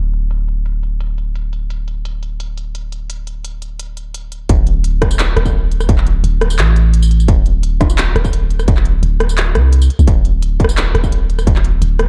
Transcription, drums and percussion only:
0.14 closed hi-hat
0.31 closed hi-hat
0.48 closed hi-hat
0.66 closed hi-hat
0.83 closed hi-hat
1.01 closed hi-hat
1.18 closed hi-hat
1.35 closed hi-hat
1.53 closed hi-hat
1.70 closed hi-hat
1.88 closed hi-hat
2.05 closed hi-hat
2.23 closed hi-hat
2.40 closed hi-hat
2.58 closed hi-hat
2.75 closed hi-hat
2.92 closed hi-hat
3.10 closed hi-hat
3.27 closed hi-hat
3.45 closed hi-hat
3.62 closed hi-hat
3.79 closed hi-hat
3.97 closed hi-hat
4.14 closed hi-hat
4.32 closed hi-hat
4.49 kick, closed hi-hat
4.67 closed hi-hat
4.84 closed hi-hat
5.02 kick, cross-stick, closed hi-hat
5.11 tambourine
5.19 clap, closed hi-hat, tambourine
5.37 cross-stick, closed hi-hat
5.46 kick, tambourine
5.72 closed hi-hat
5.80 cross-stick, tambourine
5.89 kick, closed hi-hat
5.98 clap
6.07 closed hi-hat
6.24 closed hi-hat
6.41 cross-stick, closed hi-hat
6.50 tambourine
6.59 clap, closed hi-hat
6.76 closed hi-hat
6.94 closed hi-hat
7.02 tambourine
7.11 closed hi-hat
7.20 tambourine
7.28 kick, closed hi-hat
7.46 closed hi-hat
7.63 closed hi-hat
7.81 kick, cross-stick, closed hi-hat
7.90 tambourine
7.98 clap, closed hi-hat, tambourine
8.16 cross-stick, closed hi-hat
8.25 kick, tambourine
8.33 closed hi-hat
8.50 closed hi-hat
8.59 cross-stick, tambourine
8.68 kick, closed hi-hat
8.77 clap
8.85 closed hi-hat
9.03 closed hi-hat
9.20 cross-stick, closed hi-hat
9.29 tambourine
9.38 clap, closed hi-hat
9.55 cross-stick, closed hi-hat
9.73 closed hi-hat
9.82 tambourine
9.90 closed hi-hat
9.99 tambourine
10.08 kick, closed hi-hat
10.25 closed hi-hat
10.42 closed hi-hat
10.60 kick, closed hi-hat
10.64 cross-stick
10.69 tambourine
10.77 clap, closed hi-hat, tambourine
10.95 cross-stick, closed hi-hat
11.04 kick, tambourine
11.12 closed hi-hat
11.30 closed hi-hat
11.39 cross-stick, tambourine
11.47 kick, closed hi-hat
11.56 clap
11.64 closed hi-hat
11.82 closed hi-hat
11.99 cross-stick, closed hi-hat

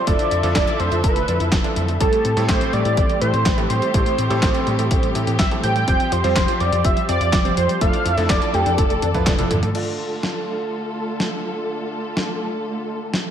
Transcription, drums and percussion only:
0.07 kick, closed hi-hat
0.19 closed hi-hat
0.31 closed hi-hat
0.43 closed hi-hat
0.55 kick, snare, clap, closed hi-hat
0.68 closed hi-hat
0.80 closed hi-hat
0.92 closed hi-hat
1.04 kick, closed hi-hat
1.16 closed hi-hat
1.28 closed hi-hat
1.40 closed hi-hat
1.52 kick, snare, clap, closed hi-hat
1.64 closed hi-hat
1.76 closed hi-hat
1.88 closed hi-hat
2.00 kick, closed hi-hat
2.13 closed hi-hat
2.25 closed hi-hat
2.37 closed hi-hat
2.49 kick, snare, clap, closed hi-hat
2.61 closed hi-hat
2.73 closed hi-hat
2.85 closed hi-hat
2.97 kick, closed hi-hat
3.09 closed hi-hat
3.22 closed hi-hat
3.34 closed hi-hat
3.46 kick, snare, clap, closed hi-hat
3.58 closed hi-hat
3.70 closed hi-hat
3.82 closed hi-hat
3.94 kick, closed hi-hat
4.06 closed hi-hat
4.18 closed hi-hat
4.30 closed hi-hat
4.42 kick, snare, clap, closed hi-hat
4.55 closed hi-hat
4.67 closed hi-hat
4.79 closed hi-hat
4.91 kick, closed hi-hat
5.03 closed hi-hat
5.15 closed hi-hat
5.27 closed hi-hat
5.39 kick, snare, clap, closed hi-hat
5.51 closed hi-hat
5.64 closed hi-hat
5.76 closed hi-hat
5.88 kick, closed hi-hat
6.00 closed hi-hat
6.12 closed hi-hat
6.24 closed hi-hat
6.36 kick, snare, clap, closed hi-hat
6.48 closed hi-hat
6.60 closed hi-hat
6.73 closed hi-hat
6.85 kick, closed hi-hat
6.97 closed hi-hat
7.09 closed hi-hat
7.21 closed hi-hat
7.33 kick, snare, clap, closed hi-hat
7.45 closed hi-hat
7.57 closed hi-hat
7.69 closed hi-hat
7.81 kick, closed hi-hat
7.93 closed hi-hat
8.06 closed hi-hat
8.18 closed hi-hat
8.30 kick, snare, clap, closed hi-hat
8.42 closed hi-hat
8.54 closed hi-hat
8.66 closed hi-hat
8.78 kick, closed hi-hat
8.90 closed hi-hat
9.02 closed hi-hat, high tom
9.14 kick, closed hi-hat
9.27 kick, snare, clap, closed hi-hat, mid tom
9.39 closed hi-hat, mid tom
9.51 closed hi-hat, mid tom
9.63 closed hi-hat, mid tom
9.75 crash
10.23 snare
11.20 snare
12.17 snare
13.14 snare

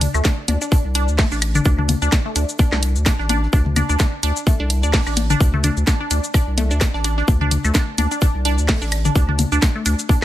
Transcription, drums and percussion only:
0.01 closed hi-hat, mid tom, cabasa, shaker
0.14 cabasa, claves
0.25 kick, snare, cabasa, shaker
0.48 closed hi-hat, high conga, shaker
0.61 cabasa
0.72 kick, shaker
0.95 closed hi-hat, shaker
1.08 cabasa
1.18 kick, snare, open hi-hat, high conga
1.32 cabasa
1.42 closed hi-hat, claves, shaker
1.55 closed hi-hat, mid tom, cabasa
1.65 kick, shaker
1.79 mid tom
1.89 closed hi-hat, mid tom, high conga, cabasa, shaker
2.02 cabasa
2.12 kick, snare, cabasa, shaker
2.36 closed hi-hat, cabasa, shaker
2.49 cabasa
2.59 kick, high conga, shaker
2.72 snare, claves
2.83 closed hi-hat, shaker
2.96 cabasa
3.06 kick, snare, shaker
3.19 snare
3.29 closed hi-hat, high conga, shaker
3.43 snare
3.53 kick, shaker
3.66 mid tom
3.76 closed hi-hat, mid tom, high conga, cabasa, claves, shaker
3.89 cabasa
3.99 kick, snare, cabasa, shaker
4.23 closed hi-hat, shaker
4.36 cabasa
4.47 kick, high conga, shaker
4.70 closed hi-hat, shaker
4.83 cabasa
4.93 kick, snare, open hi-hat
5.07 cabasa, claves
5.17 closed hi-hat, high conga, shaker
5.30 closed hi-hat, mid tom, cabasa
5.41 kick, shaker
5.54 mid tom
5.64 closed hi-hat, mid tom, cabasa, shaker
5.77 cabasa
5.87 kick, snare, high conga, cabasa, shaker
6.11 closed hi-hat, cabasa, shaker
6.24 cabasa
6.34 kick, claves, shaker
6.58 closed hi-hat, high conga, shaker
6.71 cabasa
6.81 kick, snare, shaker
6.94 snare
7.04 closed hi-hat, shaker
7.18 snare
7.28 kick, high conga, shaker
7.41 mid tom
7.51 closed hi-hat, mid tom, cabasa, shaker
7.65 cabasa, claves
7.74 kick, snare, cabasa, shaker
7.98 closed hi-hat, high conga, shaker
8.11 cabasa
8.21 kick, shaker
8.45 closed hi-hat, shaker
8.58 cabasa
8.69 kick, snare, open hi-hat, high conga
8.82 cabasa
8.92 closed hi-hat, claves, shaker
9.05 closed hi-hat, mid tom, cabasa
9.15 kick, shaker
9.29 mid tom
9.39 closed hi-hat, mid tom, high conga, cabasa, shaker
9.52 cabasa
9.62 kick, snare, cabasa, shaker
9.86 closed hi-hat, cabasa, shaker
9.99 cabasa
10.09 kick, high conga, shaker

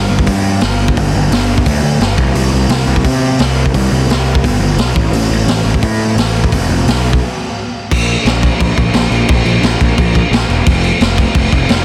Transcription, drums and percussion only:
0.19 kick
0.26 kick, open hi-hat
0.61 snare, open hi-hat
0.88 kick
0.97 kick, open hi-hat
1.32 snare, open hi-hat
1.58 kick
1.66 kick, open hi-hat
2.01 snare, open hi-hat
2.18 kick
2.35 open hi-hat
2.69 snare, open hi-hat
2.96 kick
3.05 kick, open hi-hat
3.39 snare, open hi-hat
3.66 kick
3.74 kick, open hi-hat
4.10 snare, open hi-hat
4.35 kick
4.44 kick, open hi-hat
4.78 snare, open hi-hat
4.96 kick
5.13 open hi-hat
5.48 snare, open hi-hat
5.74 kick
5.83 kick, open hi-hat
6.18 snare, open hi-hat
6.44 kick
6.52 kick, open hi-hat
6.88 snare, open hi-hat
7.13 kick
7.91 kick, crash
8.09 crash
8.26 snare, crash
8.43 kick, crash
8.60 kick, crash
8.77 kick, crash
8.94 snare, crash
9.12 crash
9.28 kick, crash
9.46 crash
9.63 snare, crash
9.81 kick, crash
9.98 kick, crash
10.15 kick, crash
10.33 snare, crash
10.50 crash
10.67 kick, crash
10.84 crash
11.01 snare, crash
11.18 kick, crash
11.35 kick, crash
11.53 kick, crash
11.69 snare, crash

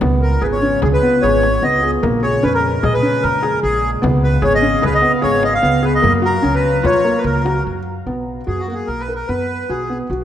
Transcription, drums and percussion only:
0.01 frame drum
0.82 frame drum
1.43 frame drum
2.03 frame drum
2.83 frame drum
3.43 frame drum
4.04 frame drum
4.83 frame drum
5.43 frame drum
6.03 frame drum
6.85 frame drum
7.46 frame drum

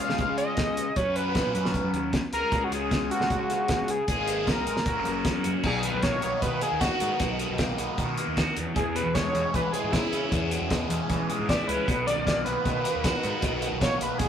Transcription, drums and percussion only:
0.10 snare
0.18 kick, closed hi-hat
0.38 closed hi-hat
0.57 kick, snare, closed hi-hat
0.77 closed hi-hat
0.96 kick, closed hi-hat
1.16 closed hi-hat
1.35 kick, snare, closed hi-hat
1.55 closed hi-hat
1.65 snare
1.74 kick, closed hi-hat
1.94 closed hi-hat
2.13 kick, snare, closed hi-hat
2.33 closed hi-hat
2.52 kick, closed hi-hat
2.72 closed hi-hat
2.91 kick, snare, closed hi-hat
3.11 closed hi-hat
3.21 snare
3.30 kick, closed hi-hat
3.50 snare, closed hi-hat
3.68 kick, snare, closed hi-hat
3.88 closed hi-hat
4.08 kick, closed hi-hat
4.28 closed hi-hat
4.47 kick, snare, closed hi-hat
4.67 closed hi-hat
4.77 snare
4.86 kick, closed hi-hat
5.05 closed hi-hat
5.25 kick, snare, closed hi-hat
5.44 closed hi-hat
5.63 kick, crash
5.83 closed hi-hat
6.02 kick, snare, closed hi-hat
6.22 closed hi-hat
6.42 kick, closed hi-hat
6.61 closed hi-hat
6.81 kick, snare, closed hi-hat
7.00 closed hi-hat
7.20 kick, closed hi-hat
7.39 closed hi-hat
7.58 kick, snare, closed hi-hat
7.78 closed hi-hat
7.98 kick, closed hi-hat
8.18 closed hi-hat
8.37 kick, snare, closed hi-hat
8.57 closed hi-hat
8.76 kick, closed hi-hat
8.96 closed hi-hat
9.15 kick, snare, closed hi-hat
9.35 closed hi-hat
9.54 kick, closed hi-hat
9.74 closed hi-hat
9.93 kick, snare, closed hi-hat
10.13 closed hi-hat
10.32 kick, closed hi-hat
10.51 closed hi-hat
10.70 kick, snare, closed hi-hat
10.90 closed hi-hat
11.10 kick, closed hi-hat
11.30 closed hi-hat
11.49 kick, snare, closed hi-hat
11.69 closed hi-hat
11.88 kick, closed hi-hat
12.08 closed hi-hat
12.27 kick, snare, closed hi-hat
12.46 closed hi-hat
12.65 kick, closed hi-hat
12.85 closed hi-hat
13.04 kick, snare, closed hi-hat
13.23 closed hi-hat
13.42 kick, closed hi-hat
13.62 closed hi-hat
13.81 kick, snare, closed hi-hat
14.01 closed hi-hat
14.19 kick, closed hi-hat

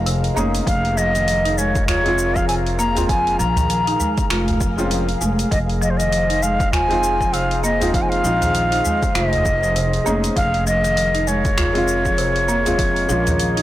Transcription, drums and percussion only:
0.06 open hi-hat, shaker
0.24 open hi-hat
0.37 shaker
0.55 open hi-hat, shaker
0.67 kick, open hi-hat, shaker
0.85 open hi-hat
0.98 shaker
1.15 open hi-hat, shaker
1.28 open hi-hat, shaker
1.45 open hi-hat
1.58 shaker
1.75 kick, open hi-hat, shaker
1.88 finger snap, open hi-hat, udu, shaker
2.06 open hi-hat
2.18 shaker
2.36 kick, shaker
2.49 open hi-hat, shaker
2.67 open hi-hat
2.79 shaker
2.97 open hi-hat, udu, shaker
3.09 kick, open hi-hat, shaker
3.27 open hi-hat
3.40 shaker
3.56 open hi-hat, udu, shaker
3.70 open hi-hat, shaker
3.87 open hi-hat
4.00 udu, shaker
4.18 kick, open hi-hat, shaker
4.30 finger snap, open hi-hat, shaker
4.48 open hi-hat, udu
4.61 kick, shaker
4.78 shaker
4.91 open hi-hat, shaker
5.09 open hi-hat
5.21 shaker
5.39 open hi-hat, shaker
5.52 kick, open hi-hat, shaker
5.69 open hi-hat
5.82 shaker
6.00 open hi-hat, shaker
6.12 open hi-hat, shaker
6.30 open hi-hat
6.43 shaker
6.60 kick, open hi-hat, shaker
6.73 finger snap, open hi-hat, udu, shaker
6.91 open hi-hat
7.03 shaker
7.21 kick, shaker
7.34 open hi-hat, shaker
7.51 open hi-hat
7.64 shaker
7.81 open hi-hat, udu, shaker
7.94 kick, open hi-hat, shaker
8.12 open hi-hat
8.25 shaker
8.42 open hi-hat, udu, shaker
8.55 open hi-hat, shaker
8.72 open hi-hat
8.85 udu, shaker
9.03 kick, open hi-hat, shaker
9.15 finger snap, open hi-hat, shaker
9.33 open hi-hat, udu
9.46 kick, shaker
9.63 shaker
9.76 open hi-hat, shaker
9.93 open hi-hat
10.06 shaker
10.24 open hi-hat, shaker
10.37 kick, open hi-hat, shaker
10.54 open hi-hat
10.67 shaker
10.84 open hi-hat, shaker
10.97 open hi-hat, shaker
11.15 open hi-hat
11.28 shaker
11.45 kick, open hi-hat, shaker
11.58 finger snap, open hi-hat, udu, shaker
11.75 open hi-hat
11.88 shaker
12.05 kick, shaker
12.18 open hi-hat, shaker
12.36 open hi-hat
12.49 shaker
12.66 open hi-hat, udu, shaker
12.79 kick, open hi-hat, shaker
12.96 open hi-hat
13.09 shaker
13.27 open hi-hat, udu, shaker
13.39 open hi-hat, shaker
13.57 open hi-hat

